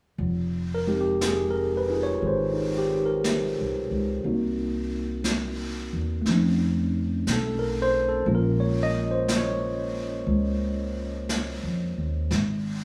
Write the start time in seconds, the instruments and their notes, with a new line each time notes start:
0.18 upright bass F1, brush sweep
0.75 tine electric piano A#4
0.87 tine electric piano G#3 C4 D#4 G4
1.01 tine electric piano G4
1.21 brush sweep, snare, hi-hat pedal
1.27 tine electric piano G#4
1.51 tine electric piano A#4
1.77 tine electric piano B4
1.89 tine electric piano D#4 F4 G#4
2.03 tine electric piano C#5
2.22 upright bass G#1, brush sweep
2.27 tine electric piano C5
2.53 tine electric piano D#4
2.78 tine electric piano G4
3.06 tine electric piano A#4
3.24 brush sweep, snare, hi-hat pedal
3.59 upright bass C2
3.91 upright bass C#2
4.24 upright bass C2, tine electric piano A#3 C4 D#4 F#4, brush sweep
5.24 brush sweep, snare, hi-hat pedal
5.93 upright bass E2
6.22 tine electric piano A3, brush sweep, snare
6.26 upright bass F2, tine electric piano C4 C#4
6.33 tine electric piano D#4
7.27 upright bass B1, brush sweep, snare, hi-hat pedal
7.33 tine electric piano A4
7.59 tine electric piano A#4
7.82 tine electric piano C5
8.09 tine electric piano A4
8.26 upright bass A#1, tine electric piano G#3 A#3 C#4 F4, brush sweep
8.35 tine electric piano A#4
8.60 tine electric piano C#5
8.83 tine electric piano D#5
9.11 tine electric piano C5
9.28 brush sweep, snare, hi-hat pedal
9.36 tine electric piano C#5
10.27 upright bass C#2, brush sweep
11.29 brush sweep, snare, hi-hat pedal
11.63 upright bass F2
11.97 upright bass D#2
12.31 upright bass G#1, brush sweep, snare